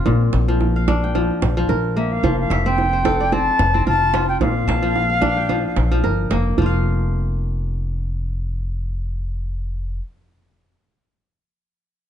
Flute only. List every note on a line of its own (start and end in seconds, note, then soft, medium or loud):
1.96 2.14 E5 medium
2.12 2.39 F5 medium
2.39 2.68 F5 medium
2.66 3.34 G5 medium
3.32 3.87 A5 loud
3.87 4.26 A5 loud
4.29 4.40 G5 medium
4.42 6.00 F5 loud